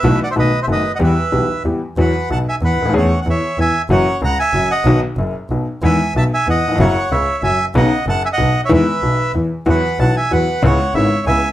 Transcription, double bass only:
\new Staff \with { instrumentName = "Double bass" } { \clef bass \time 3/4 \key e \minor \tempo 4 = 187 b,,8 r8 b,,8 r8 fis,,8 r8 | e,8 r8 b,,8 r8 e,8 r8 | \key e \major e,8 r8 b,,8 r8 e,8 d,8 | e,8 r8 e,8 r8 e,8 r8 |
fis,,8 r8 cis,8 r8 fis,,8 r8 | b,,8 r8 fis,,8 r8 b,,8 r8 | e,8 r8 b,,8 r8 e,8 r8 | fis,,8 r8 cis,8 r8 fis,,8 r8 |
b,,8 r8 fis,,8 r8 b,,8 r8 | e,8 r8 b,,8 r8 e,8 r8 | e,8 r8 b,,8 r8 e,8 r8 | cis,8 r8 gis,,8 r8 cis,8 r8 | }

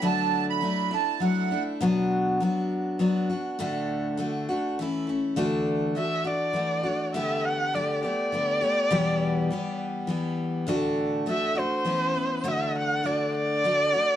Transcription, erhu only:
\new Staff \with { instrumentName = "Erhu" } { \time 3/4 \key d \major \tempo 4 = 102 r2. | r2. | r2. | r4 e''8 d''4. |
e''8 fis''8 d''8 d''4.~ | d''4. r4. | r4 e''8 c''4. | e''8 fis''8 d''8 d''4. | }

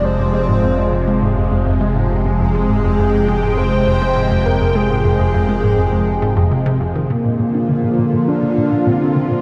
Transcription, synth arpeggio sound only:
\new Staff \with { instrumentName = "Synth arpeggio sound" } { \clef bass \time 4/4 \key f \dorian \tempo 4 = 102 f,16 f,16 aes16 aes,16 f,16 f,16 f,16 aes16 aes,16 f,16 f,16 f,16 aes16 aes,16 f,16 f,16 | f,16 aes16 aes,16 f,16 f,16 f,16 aes16 aes,16 f,16 f,16 f,16 aes16 aes,16 f,16 f,16 f,16 | aes16 aes,16 f,16 f,16 f,16 aes16 aes,16 f,16 f,16 f,16 aes,16 f,16 c16 c16 f,16 ees16 | bes,16 bes,16 bes,16 d'16 d16 bes,16 bes,16 bes,16 d'16 d16 bes,16 bes,16 bes,16 d'16 d16 bes,16 | }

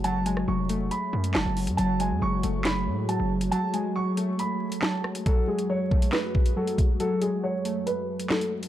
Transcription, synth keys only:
\new Staff \with { instrumentName = "Synth keys" } { \clef bass \time 4/4 \key fis \minor \tempo 4 = 138 fis8 gis8 fis8 a4. fis4 | fis8 gis8 fis8 a4. fis4 | fis8 gis8 fis8 a4. fis4 | fis8 gis8 fis8 a4. fis4 |
fis8 gis8 fis8 a4. fis4 | }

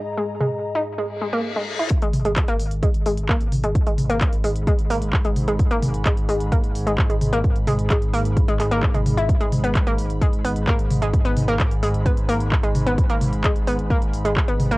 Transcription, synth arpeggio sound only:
\new Staff \with { instrumentName = "Synth arpeggio sound" } { \clef bass \time 4/4 \key gis \minor \tempo 4 = 130 r16 gis16 r16 gis16 r8 dis'16 r16 gis16 r16 gis16 ais16 r16 gis16 r16 e'16 | r16 gis16 r16 gis16 r16 ais16 r8 gis16 r16 gis16 r16 ais16 r8 gis16 | r16 gis16 r16 ais16 r8 gis16 r16 gis16 r16 ais16 r8 gis16 r16 gis16 | r16 ais16 r8 gis16 r16 gis16 r16 ais16 r8 gis16 r16 gis16 r16 ais16 |
r8 gis16 r16 gis16 r16 ais16 r8 gis16 gis16 ais16 r16 gis16 r16 e'16 | r16 gis16 r16 b16 r16 ais16 r8 gis16 r16 b16 r16 ais16 r8 gis16 | r16 b16 r16 ais16 r8 gis16 r16 b16 r16 ais16 r8 gis16 r16 b16 | r16 ais16 r8 gis16 r16 b16 r16 ais16 r8 gis16 r16 b16 r16 ais16 | }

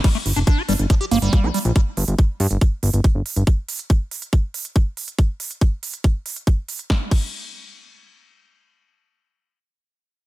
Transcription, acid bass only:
\new Staff \with { instrumentName = "Acid bass" } { \time 4/4 \key g \minor \tempo 4 = 140 g16 a16 r16 d'16 d'16 g'16 g16 r16 f16 g'16 bes16 g8 g'16 g16 r16 | r1 | r1 | r1 |
r1 | r1 | }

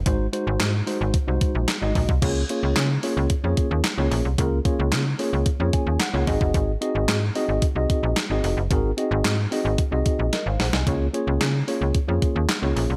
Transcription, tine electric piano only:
\new Staff \with { instrumentName = "Tine electric piano" } { \time 4/4 \key des \major \tempo 4 = 111 << { r1 | r1 | r2 r8 aes''8 ges''4 | r1 |
r2. <bes' ees''>16 <c'' f''>16 <c'' ges''>16 <ees'' aes''>16~ | <ees'' aes''>16 r2. r8. | } \\ { <aes ees' ges' c''>16 r16 <aes ees' ges' c''>8. r16 <aes ees' ges' c''>8 r16 <aes ees' ges' c''>8. r16 <aes ees' ges' ees''>8 r16 | <bes des' f' aes' des''>16 r16 <bes des' f' aes' des''>8. r16 <bes des' f' aes' des''>8 r16 <bes des' f' aes' des''>8. r16 <bes des' f' aes' des''>8 r16 | <bes des' f' aes' bes'>16 r16 <bes des' f' aes' des''>8. r16 <bes des' f' aes' des''>8 r16 <bes des' f' aes' des''>8. r16 <bes des' f' aes' des''>16 <c' ees' ges' aes' ees''>8~ | <c' ees' ges' aes' ees''>16 r16 <c' ees' ges' aes' ees''>8. r16 <c' ees' ges' aes' ees''>8 r16 <c' ees' ges' aes' ees''>8. r16 <c' ees' ges' aes' ees''>8 r16 |
<c' ees' ges' aes' bes'>16 r16 <c' ees' ges' aes' ees''>8. r16 <c' ees' ges' aes' ees''>8 r16 <c' ees' ges' aes' ees''>8. r4 | <bes des' f' aes' des''>16 r16 <bes des' f' aes' des''>8. r16 <bes des' f' aes' des''>8 r16 <bes des' f' aes' des''>8. r16 <bes des' f' aes' des''>8 r16 | } >> }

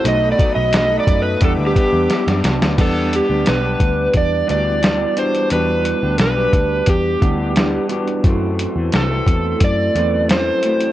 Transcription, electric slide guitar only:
\new Staff \with { instrumentName = "Electric slide guitar" } { \time 4/4 \key e \minor \tempo 4 = 88 \tuplet 3/2 { dis''8 d''8 dis''8 dis''8 d''8 b'8 a'8 g'4~ } g'8 r8 | a'8 g'8 b'4 d''8 d''4 c''8 | b'4 b'4 g'4. r8 | r4 a'4 d''4 c''4 | }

